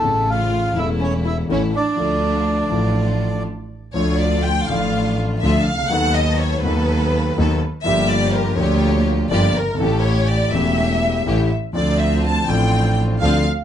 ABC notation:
X:1
M:4/4
L:1/16
Q:1/4=123
K:Dm
V:1 name="Bandoneon"
A2 f4 e2 ^c2 e2 c2 d2- | d12 z4 | z16 | z16 |
z16 | z16 | z16 |]
V:2 name="Violin section"
A,2 F4 E2 ^C2 E2 C2 D2- | D12 z4 | ^c2 d2 g2 f4 z2 e2 f2 | ^f2 ^d2 ^c2 =B8 z2 |
e2 d2 B2 ^c4 z2 d2 B2 | A2 ^c2 d2 e8 z2 | d2 e2 a2 g4 z2 f2 z2 |]
V:3 name="String section"
[A,^C]6 [A,CE]6 [A,CE]2 z2 | [A,DF]6 [A,DF]6 z4 | [A,DF]6 [A,DF]6 [A,DF]2 z2 | [=B,^DA]6 [B,DA]6 [B,DA]2 z2 |
[B,FG]6 [B,FG]6 [B,FG]2 z2 | [A,^CG]6 [A,CG]6 [A,CG]2 z2 | [CDF]6 [CDF]6 [CDF]2 z2 |]
V:4 name="Grand piano" clef=bass
[A,,,A,,^C,A,^CA]6 [E,,,E,,E,A,CA]6 [A,,,A,,E,A,CA]2 z2 | [D,,D,F,A,DA]6 [A,,,A,,F,A,DA]6 z4 | [D,,D,F,A,DA]6 [A,,,A,,F,A,DA]6 [D,,D,F,A,DA]2 z/2 C,,/2 ^C,,/2 D,,/2 | [^D,,^D,^F,=B,^DA]6 [D,,D,F,B,DA]6 [D,,D,F,B,DA]2 z2 |
[G,,,G,,F,B,DG]6 [D,,D,F,B,DG]6 [G,,,G,,F,B,DG]2 z/2 ^F,,,/2 G,,,/2 ^G,,,/2 | [A,,,A,,E,A,^CG]6 [E,,,E,,E,A,CG]6 [A,,,A,,E,A,CG]2 z2 | [D,,D,F,CDA]6 [A,,,A,,F,CDA]6 [D,,D,F,CDA]2 z2 |]
V:5 name="Double bass" clef=bass
A,,,6 E,,,6 A,,,2 z2 | D,,6 A,,,6 z4 | D,,6 A,,,6 D,,2 ^C,,2 | ^D,,6 D,,6 D,,2 z2 |
G,,,6 D,,6 G,,,2 G,,,2 | A,,,6 E,,,6 A,,,2 z2 | D,,6 A,,,6 D,,2 z2 |]